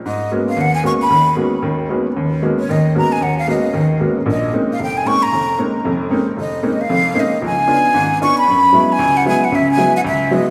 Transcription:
0.06 0.28 G#2 soft
0.06 0.31 D#5 medium
0.31 0.48 G#3 soft
0.31 0.48 A#3 soft
0.31 0.48 B3 soft
0.31 0.48 C#4 soft
0.31 0.48 F#4 soft
0.49 0.62 F5 medium
0.57 0.80 D#2 medium
0.61 0.74 F#5 medium
0.75 0.84 G#5 medium
0.83 1.00 G#3 soft
0.83 1.00 A#3 soft
0.83 1.00 B3 soft
0.83 1.00 C#4 soft
0.83 1.00 F#4 soft
0.83 0.92 C#6 medium
1.02 1.35 B5 medium
1.10 1.33 D#2 medium
1.10 1.33 D#3 medium
1.36 1.53 G#3 soft
1.36 1.53 A#3 soft
1.36 1.53 B3 soft
1.36 1.53 C#4 soft
1.36 1.53 F#4 soft
1.62 1.85 D#2 medium
1.62 1.85 D#3 medium
1.89 2.06 G#3 soft
1.89 2.06 A#3 soft
1.89 2.06 B3 soft
1.89 2.06 C#4 soft
1.89 2.06 F#4 soft
2.17 2.39 D#2 medium
2.42 2.59 G#3 soft
2.42 2.59 A#3 soft
2.42 2.59 B3 soft
2.42 2.59 C#4 soft
2.42 2.59 F#4 soft
2.59 2.73 C#5 medium
2.69 2.91 D#2 medium
2.69 2.91 D#3 medium
2.69 2.96 D#5 medium
2.95 3.11 G#3 soft
2.95 3.11 A#3 soft
2.95 3.11 B3 soft
2.95 3.11 C#4 soft
2.95 3.12 F#4 soft
2.95 3.14 A#5 medium
3.12 3.24 G#5 medium
3.21 3.43 D#2 medium
3.21 3.37 F#5 medium
3.38 3.48 F5 medium
3.47 3.64 G#3 soft
3.47 3.64 A#3 soft
3.47 3.64 B3 soft
3.47 3.64 C#4 soft
3.47 3.64 F#4 soft
3.47 3.87 D#5 medium
3.74 3.96 D#2 medium
3.74 3.96 D#3 medium
4.00 4.16 G#3 soft
4.00 4.16 A#3 soft
4.00 4.16 B3 soft
4.00 4.17 C#4 soft
4.00 4.17 F#4 soft
4.26 4.48 A#1 medium
4.26 4.49 A#2 medium
4.31 4.53 D#5 medium
4.53 4.69 G#3 soft
4.53 4.69 A#3 soft
4.53 4.69 C4 soft
4.53 4.69 C#4 soft
4.53 4.70 D#4 soft
4.73 4.81 F5 medium
4.79 5.01 F1 medium
4.79 4.99 G5 medium
4.97 5.09 G#5 medium
5.05 5.22 G#3 soft
5.05 5.22 A#3 soft
5.05 5.22 C4 soft
5.05 5.22 C#4 soft
5.05 5.22 D#4 soft
5.05 5.24 C#6 medium
5.23 5.59 A#5 medium
5.33 5.54 F1 medium
5.58 5.74 G#3 soft
5.58 5.74 A#3 soft
5.58 5.74 C4 soft
5.58 5.75 C#4 soft
5.58 5.75 D#4 soft
5.85 6.07 F1 medium
5.85 6.07 F2 medium
6.10 6.27 G#3 soft
6.10 6.27 A#3 soft
6.10 6.27 C4 soft
6.10 6.27 C#4 soft
6.10 6.27 D#4 soft
6.37 6.59 F1 medium
6.37 6.83 D#5 medium
6.63 6.79 G#3 soft
6.63 6.79 A#3 soft
6.63 6.79 C4 soft
6.63 6.79 C#4 soft
6.63 6.79 D#4 soft
6.81 7.21 F5 medium
6.89 7.12 F1 medium
6.89 7.12 F2 medium
7.14 7.31 G#3 soft
7.14 7.31 A#3 soft
7.14 7.31 C4 soft
7.14 7.31 C#4 soft
7.14 7.32 D#4 medium
7.20 7.44 D#5 medium
7.42 7.64 C#2 medium
7.42 7.64 F3 medium
7.42 8.18 G#5 medium
7.67 7.84 B3 soft
7.67 7.84 C#4 soft
7.67 7.84 D4 soft
7.67 7.84 F4 soft
7.94 8.16 G#1 medium
7.94 8.17 G#2 medium
8.21 8.37 B3 soft
8.21 8.37 C#4 soft
8.21 8.37 D4 soft
8.21 8.37 F4 soft
8.21 8.36 C#6 medium
8.38 8.94 B5 medium
8.48 8.70 F#2 medium
8.73 8.89 F#3 soft
8.73 8.89 G#3 soft
8.73 8.89 B3 soft
8.73 8.90 E4 medium
8.92 9.18 G#5 medium
8.99 9.21 C#2 medium
9.17 9.27 F#5 medium
9.26 9.42 F#3 soft
9.26 9.42 G#3 soft
9.26 9.42 B3 soft
9.26 9.42 E4 medium
9.26 9.46 G#5 loud
9.44 9.57 F#5 medium
9.52 9.74 C#2 medium
9.52 9.74 C#3 medium
9.52 9.69 E5 medium
9.71 9.93 G#5 loud
9.77 9.94 F#3 soft
9.77 9.94 G#3 soft
9.77 9.94 B3 soft
9.77 9.94 E4 medium
9.96 10.01 F#5 medium
10.04 10.27 C#2 medium
10.04 10.27 C#3 medium
10.04 10.35 E5 medium
10.31 10.47 F#3 medium
10.31 10.47 G#3 soft
10.31 10.47 B3 soft
10.31 10.47 E4 medium
10.31 10.47 D#5 medium

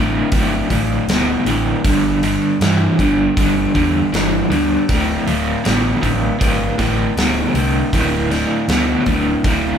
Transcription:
0.00 0.19 A1 medium
0.00 0.29 D2 medium
0.00 0.29 A2 medium
0.32 0.56 G1 medium
0.32 0.67 D2 medium
0.32 0.67 A2 medium
0.32 kick loud
0.32 open hi-hat medium
0.70 0.95 A1 medium
0.70 1.05 D2 medium
0.70 1.05 A2 medium
0.70 kick medium
0.70 open hi-hat medium
1.07 1.32 D1 medium
1.07 1.43 D2 medium
1.07 1.43 B2 medium
1.07 snare loud
1.07 open hi-hat medium
1.45 1.70 A1 medium
1.45 1.80 D2 medium
1.45 1.81 A2 medium
1.45 open hi-hat medium
1.85 2.33 G1 medium
1.85 2.19 G2 medium
1.85 2.19 D3 medium
1.85 kick loud
1.85 open hi-hat medium
2.23 2.57 G2 medium
2.23 2.57 D3 medium
2.23 open hi-hat medium
2.61 2.85 G2 medium
2.61 2.95 G2 medium
2.61 2.96 E3 medium
2.61 snare loud
2.61 open hi-hat medium
2.99 3.23 G1 medium
2.99 3.33 G2 medium
2.99 3.34 D3 medium
2.99 kick medium
2.99 open hi-hat soft
3.37 3.61 G1 medium
3.37 3.71 G2 medium
3.37 3.71 D3 medium
3.37 kick loud
3.37 open hi-hat medium
3.75 3.99 E2 medium
3.75 4.09 G2 medium
3.75 4.09 D3 medium
3.75 kick medium
3.75 open hi-hat soft
4.13 4.37 G1 medium
4.13 4.47 G2 medium
4.13 4.47 E3 medium
4.13 snare medium
4.13 open hi-hat medium
4.50 4.74 D2 medium
4.50 4.84 G2 medium
4.50 4.85 D3 medium
4.50 open hi-hat soft
4.89 5.13 D1 medium
4.89 5.23 D2 medium
4.89 5.23 A2 medium
4.89 kick loud
4.89 open hi-hat medium
5.27 5.52 D1 medium
5.27 5.61 D2 medium
5.27 5.61 A2 medium
5.27 open hi-hat soft
5.64 5.90 A1 medium
5.64 5.98 D2 medium
5.64 5.99 B2 loud
5.64 snare medium
5.64 open hi-hat medium
6.02 6.27 A1 medium
6.02 6.36 D2 medium
6.02 6.36 A2 medium
6.02 kick medium
6.02 open hi-hat soft
6.39 6.65 G1 medium
6.39 6.74 D2 medium
6.39 6.74 A2 medium
6.39 kick loud
6.39 open hi-hat medium
6.78 7.03 A1 medium
6.78 7.12 D2 medium
6.78 7.13 A2 medium
6.78 kick medium
6.78 snare soft
6.78 open hi-hat medium
7.16 7.41 D1 medium
7.16 7.51 D2 medium
7.16 7.51 B2 medium
7.16 snare loud
7.16 open hi-hat medium
7.54 7.78 C2 medium
7.54 7.89 D2 medium
7.54 7.89 A2 medium
7.54 open hi-hat medium
7.93 8.42 D1 medium
7.93 8.27 D2 medium
7.93 8.28 A2 medium
7.93 kick medium
7.93 open hi-hat medium
8.30 8.65 D2 medium
8.30 8.65 A2 medium
8.30 snare soft
8.30 open hi-hat soft
8.68 8.92 D2 medium
8.68 9.03 D2 medium
8.68 9.03 B2 loud
8.68 snare loud
8.68 open hi-hat medium
9.06 9.31 D1 medium
9.06 9.41 D2 medium
9.06 9.41 A2 medium
9.06 kick medium
9.06 open hi-hat soft
9.44 9.69 D1 medium
9.44 9.78 D2 medium
9.44 9.78 A2 loud
9.44 kick loud
9.44 open hi-hat medium

